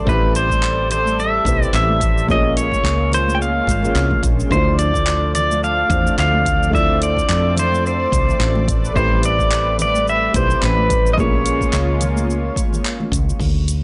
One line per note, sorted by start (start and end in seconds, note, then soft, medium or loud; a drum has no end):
0.00 2.27 G3 medium
0.00 2.26 A3 medium
0.00 2.27 A4 medium
0.00 2.25 D5 medium
0.05 1.38 A1 loud
0.05 1.42 A3 medium
0.05 1.42 C4 medium
0.05 1.43 E4 medium
0.05 1.43 G4 medium
0.05 kick loud
0.05 high conga medium
0.09 0.34 B4 medium
0.09 1.44 C5 medium
0.09 shaker soft
0.35 0.90 C5 medium
0.35 closed hi-hat medium
0.35 shaker medium
0.50 kick medium
0.50 high conga medium
0.50 shaker soft
0.63 clap loud
0.63 shaker soft
0.90 1.20 C5 medium
0.90 closed hi-hat medium
0.90 low conga medium
0.90 shaker medium
1.06 high conga medium
1.06 shaker soft
1.19 1.64 E5 medium
1.19 shaker soft
1.44 1.64 B1 medium
1.44 2.25 A3 medium
1.44 2.26 C4 medium
1.44 2.26 E4 medium
1.44 2.27 G4 medium
1.44 kick loud
1.44 closed hi-hat medium
1.44 high conga medium
1.44 shaker medium
1.48 2.27 B4 medium
1.63 1.74 D5 medium
1.63 shaker soft
1.73 2.28 A1 loud
1.73 2.26 E5 loud
1.73 clap loud
1.73 shaker soft
1.89 high conga loud
2.01 kick loud
2.01 closed hi-hat medium
2.01 shaker medium
2.18 shaker soft
2.27 2.77 A#1 loud
2.27 4.49 G#3 medium
2.27 3.64 A#3 medium
2.27 4.49 A#3 medium
2.27 4.48 C#4 medium
2.27 3.65 C#4 medium
2.27 4.49 F4 medium
2.27 3.65 F4 medium
2.27 3.66 G#4 medium
2.27 kick loud
2.27 high conga medium
2.27 shaker soft
2.31 3.66 C#5 loud
2.31 2.59 D#5 loud
2.57 3.14 C#5 medium
2.57 closed hi-hat medium
2.57 shaker medium
2.72 kick medium
2.72 high conga medium
2.72 shaker soft
2.83 3.60 C#2 medium
2.83 clap loud
2.83 shaker soft
3.12 3.36 C5 medium
3.12 closed hi-hat medium
3.12 low conga medium
3.12 shaker medium
3.28 high conga medium
3.28 shaker soft
3.35 3.41 G5 medium
3.42 4.20 F5 loud
3.42 shaker soft
3.67 3.86 G#1 medium
3.67 kick loud
3.67 closed hi-hat medium
3.67 high conga medium
3.67 shaker medium
3.83 3.89 A#3 medium
3.83 3.89 C#4 medium
3.83 3.90 F4 medium
3.83 3.90 G#4 medium
3.83 3.90 C#5 medium
3.83 low conga medium
3.83 shaker soft
3.95 4.14 C2 loud
3.95 clap loud
3.95 shaker soft
4.11 kick medium
4.11 high conga medium
4.11 low conga medium
4.23 4.42 A#1 medium
4.23 kick loud
4.23 closed hi-hat medium
4.23 shaker medium
4.40 shaker soft
4.49 5.82 D2 loud
4.49 8.64 F3 medium
4.49 5.86 A3 medium
4.49 11.14 A3 medium
4.49 5.87 D4 medium
4.49 6.72 D4 medium
4.49 5.87 E4 medium
4.49 5.88 F4 medium
4.49 4.80 C5 medium
4.49 11.14 D5 medium
4.49 kick loud
4.49 high conga medium
4.49 shaker soft
4.54 5.89 C5 loud
4.79 5.34 D5 loud
4.79 closed hi-hat medium
4.79 shaker medium
4.94 kick medium
4.94 high conga medium
4.94 shaker soft
5.07 clap loud
5.07 shaker soft
5.35 5.61 D5 loud
5.35 closed hi-hat medium
5.35 low conga medium
5.35 shaker medium
5.51 high conga medium
5.51 shaker soft
5.64 6.15 F5 loud
5.64 shaker soft
5.89 6.08 E2 medium
5.89 6.69 A3 medium
5.89 6.71 C4 medium
5.89 6.70 D4 medium
5.89 6.72 F4 medium
5.89 kick loud
5.89 closed hi-hat medium
5.89 high conga medium
5.89 shaker medium
5.93 6.72 C5 medium
6.07 shaker soft
6.18 7.22 D2 loud
6.18 6.71 F5 loud
6.18 clap medium
6.18 shaker soft
6.34 high conga medium
6.46 kick medium
6.46 closed hi-hat medium
6.46 shaker medium
6.63 shaker soft
6.70 8.08 A3 medium
6.70 8.66 C4 medium
6.70 8.09 D4 medium
6.70 8.09 E4 medium
6.70 8.10 F4 medium
6.70 kick loud
6.70 high conga medium
6.75 8.10 D5 loud
6.75 7.03 E5 loud
6.75 shaker soft
7.02 7.54 D5 loud
7.02 closed hi-hat medium
7.02 shaker medium
7.17 kick medium
7.17 high conga medium
7.17 shaker soft
7.29 8.05 F2 medium
7.29 clap loud
7.29 shaker soft
7.57 7.86 C5 medium
7.57 closed hi-hat loud
7.57 low conga medium
7.57 shaker medium
7.72 high conga medium
7.72 shaker soft
7.86 8.65 C5 medium
7.86 shaker soft
8.12 8.31 C2 medium
8.12 kick loud
8.12 closed hi-hat medium
8.12 high conga medium
8.12 shaker medium
8.29 low conga medium
8.29 shaker soft
8.40 8.88 A1 loud
8.40 clap loud
8.40 shaker soft
8.55 high conga medium
8.55 low conga medium
8.68 11.16 G3 medium
8.68 11.16 B4 medium
8.68 kick medium
8.68 closed hi-hat medium
8.68 shaker medium
8.85 shaker soft
8.94 10.27 A1 loud
8.94 10.31 A3 medium
8.94 10.31 C4 medium
8.94 10.32 E4 medium
8.94 10.32 G4 medium
8.94 9.25 C5 medium
8.94 kick loud
8.94 high conga medium
8.94 shaker soft
8.98 10.33 B4 medium
9.23 9.76 D5 loud
9.23 closed hi-hat medium
9.23 shaker medium
9.39 kick medium
9.39 high conga medium
9.39 shaker soft
9.52 clap loud
9.52 shaker soft
9.79 10.09 D5 loud
9.79 closed hi-hat medium
9.79 low conga medium
9.79 shaker medium
9.95 high conga medium
9.95 shaker soft
10.08 10.37 E5 loud
10.08 shaker soft
10.32 10.53 B1 medium
10.32 11.14 A3 medium
10.32 11.15 C4 medium
10.32 11.15 E4 medium
10.32 11.16 G4 medium
10.32 10.64 C5 loud
10.32 kick loud
10.32 closed hi-hat medium
10.32 high conga medium
10.32 shaker medium
10.37 11.16 B4 medium
10.50 shaker soft
10.62 11.18 A1 loud
10.62 11.10 B4 loud
10.62 clap loud
10.62 shaker soft
10.78 high conga medium
10.90 kick loud
10.90 closed hi-hat medium
10.90 shaker medium
11.06 shaker soft
11.13 13.38 G#3 medium
11.13 12.53 A#3 loud
11.13 13.38 A#3 medium
11.13 12.53 C#4 medium
11.13 13.37 C#4 medium
11.13 13.38 F4 medium
11.13 11.19 D#5 medium
11.18 11.66 A#1 loud
11.18 12.54 F4 medium
11.18 12.55 G#4 medium
11.18 12.82 C#5 medium
11.18 12.55 C#5 loud
11.18 kick loud
11.18 high conga medium
11.18 shaker soft
11.46 closed hi-hat loud
11.46 shaker medium
11.61 kick medium
11.61 high conga medium
11.61 shaker soft
11.73 12.49 C#2 medium
11.73 clap loud
11.73 shaker soft
12.01 closed hi-hat loud
12.01 low conga loud
12.01 shaker medium
12.16 high conga medium
12.16 shaker soft
12.30 shaker soft
12.56 kick loud
12.56 closed hi-hat loud
12.56 high conga medium
12.56 shaker medium
12.73 low conga medium
12.73 shaker soft
12.85 clap loud
12.85 shaker soft
13.00 high conga medium
13.00 low conga medium
13.12 13.31 C#2 loud
13.12 kick loud
13.12 closed hi-hat medium
13.12 shaker medium
13.29 shaker soft
13.39 13.84 D2 medium
13.39 kick loud
13.39 crash medium
13.39 shaker soft
13.68 closed hi-hat medium
13.68 shaker medium